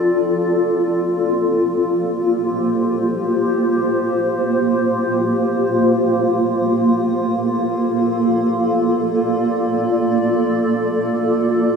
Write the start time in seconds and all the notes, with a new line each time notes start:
Already playing: C4 F4 A4 D5
0.28 A#3
1.64 G4
1.76 C5
6.78 A4
8.21 D5